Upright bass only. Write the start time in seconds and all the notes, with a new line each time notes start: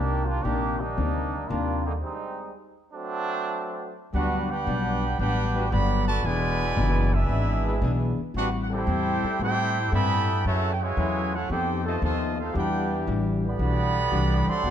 Already playing: C2
0.45 A#1
0.98 D2
1.50 D#2
4.14 D2
4.67 B1
5.19 A1
5.72 G1
6.24 E1
6.76 F#1
7.29 G#1
7.82 B1
8.18 muted upright bass stroke
8.34 A1
8.87 E2
9.24 muted upright bass stroke
9.39 A2
9.92 G2
10.45 F#2
10.97 E2
11.50 F2
12.02 D#2
12.55 E2
13.07 A1
13.59 B1
14.12 C2
14.47 muted upright bass stroke
14.64 D2